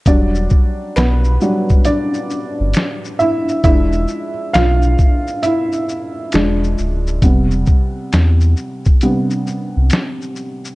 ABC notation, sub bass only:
X:1
M:4/4
L:1/16
Q:"Swing 16ths" 1/4=67
K:Em
V:1 name="Sub bass" clef=bass
E,,,2 z2 B,,,2 z4 z G,,, z4 | E,,,2 z2 B,,,2 z6 E,,,2 D,,,2 | E,,,2 z2 E,,2 z4 z C,, z4 |]